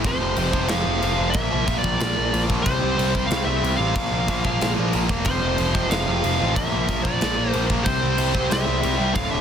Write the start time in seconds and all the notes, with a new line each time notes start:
0.04 F1 F2 C3 F3 C5, kick, crash
0.20 F1 F2 C3 F3
0.36 F1 F2 C3 F3, crash
0.53 F1 F2 C3 F3, kick
0.68 F1 F2 C3 F3 F5, snare, crash
0.85 F1 F2 C3 F3
1.01 F1 F2 C3 F3, crash
1.17 F1 F2 C3 F3
1.30 A#2 F3 A#3 E5, crash
1.35 A#1, kick
1.51 A#1 A#2 F3 A#3
1.67 A#1 A#2 F3 A#3, kick, crash
1.79 D5
1.83 A#1 A#2 F3 A#3, kick
2.00 A#1 A#2 F3 A#3, snare, crash
2.16 A#1 A#2 F3 A#3
2.33 A#1 A#2 F3 A#3, crash
2.48 A#1 A#2 F3 A#3, kick
2.62 C2 C3 G3 C4 C5, kick, crash
2.80 C2 C3 G3 C4
2.97 C2 C3 G3 C4, crash
3.13 C2 C3 G3 C4, kick
3.26 C2 C3 F5
3.30 G3 C4, snare, crash
3.45 C2 C3 G3 C4 E5
3.62 C2 C3 G3 C4, crash
3.77 A1 C3 G3 C4 F5
3.95 A#1 A#2 F3 A#3, kick, crash
4.12 A#1 A#2 F3 A#3
4.28 A#1 A#2 F3 A#3, kick, crash
4.44 A#1 A#2 F3 A#3, kick
4.61 A#1 A#2 F3 A#3, snare, crash
4.77 A#1 A#2 F3 A#3
4.93 A#1 A#2 F3 A#3, crash
5.09 A#2 F3 A#3, kick
5.25 F1 F2 C3 F3 C5, kick, crash
5.42 F1 F2 C3 F3
5.58 F1 F2 C3 F3, crash
5.75 F2 C3 F3, kick
5.90 F1 F2 C3 F3 F5, snare, crash
6.07 F1 F2 C3 F3
6.22 F1 F2 C3 F3, crash
6.39 A1 F2 C3 F3
6.55 A#1 A#2 F3 A#3 E5, kick, crash
6.71 A#1 A#2 F3 A#3
6.88 A#1 A#2 F3 A#3, kick, crash
7.03 A#1 A#2 F3 A#3 D5, kick
7.21 A#1 A#2 F3 A#3, snare, crash
7.37 A#1 A#2 F3 A#3
7.50 A#2 F3 A#3 C5, crash
7.54 A#1
7.70 A#1 A#2 F3 A#3, kick
7.84 C2 C3 G3 C4 C5, kick, crash
8.02 C2 C3 G3 C4
8.18 C2 C3 G3 C4, crash
8.34 C3 G3 C4, kick
8.50 C2 C3 G3 C4 E5, snare, crash
8.66 C2 C3 G3 C4
8.81 C2 C3 G3 C4, crash
8.97 C2 C3 G3 C4
9.14 D2 A2 D3 F5, kick, crash
9.31 D1 D2 A2 D3 E5